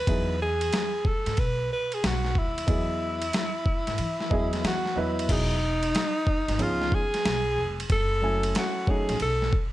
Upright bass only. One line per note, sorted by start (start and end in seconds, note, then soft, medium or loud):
0.07 0.69 E2 loud
1.26 1.37 G#2 medium
1.38 1.68 B1 medium
2.03 2.33 B1 medium
2.36 2.65 D#2 medium
2.68 3.29 E2 loud
3.87 3.98 G#2 medium
3.99 4.28 E3 medium
4.31 4.61 E2 medium
4.64 4.93 E3 medium
4.97 5.26 E2 medium
5.29 5.90 E1 loud
6.48 6.59 G#1 medium
6.60 6.89 C#2 medium
7.25 7.55 B1 medium
7.58 7.87 F1 medium
7.90 8.51 F#1 loud
9.09 9.20 A1 medium
9.21 9.50 B1 medium